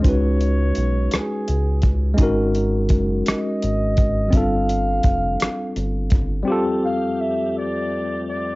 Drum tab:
HH |xxxxxx|xxxxxx|xxxxxx|------|
SD |---r--|---r--|---r--|------|
BD |o----o|o-o--o|o-o--o|------|